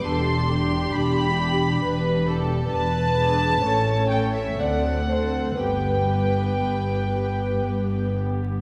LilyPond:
<<
  \new Staff \with { instrumentName = "Violin section" } { \time 3/4 \key g \major \tempo 4 = 62 c'''4 b''4. r8 | a''4. g''16 e''16 fis''4 | g''2~ g''8 r8 | }
  \new Staff \with { instrumentName = "Violin section" } { \time 3/4 \key g \major a'8 g'4. b'8 a'8 | b'4 cis''4 d''8 c''8 | b'2~ b'8 r8 | }
  \new Staff \with { instrumentName = "Viola section" } { \time 3/4 \key g \major <d' g'>8 <d' g'>4 <d' g'>4 <d' g'>8 | r8 <d' gis'>8 <cis' a'>8 <cis' a'>8 <c' a'>8 <c' a'>8 | <b g'>8 <b g'>4 <b g'>4 <b g'>8 | }
  \new Staff \with { instrumentName = "Cello section" } { \clef bass \time 3/4 \key g \major e,4 e,4 e,4 | e,4 a,4 d,4 | g,4 g,4 g,4 | }
  \new Staff \with { instrumentName = "Double bass section" } { \clef bass \time 3/4 \key g \major e,,4 e,,4 e,,4 | e,,4 a,,4 d,4 | g,,4 g,,4 g,,4 | }
>>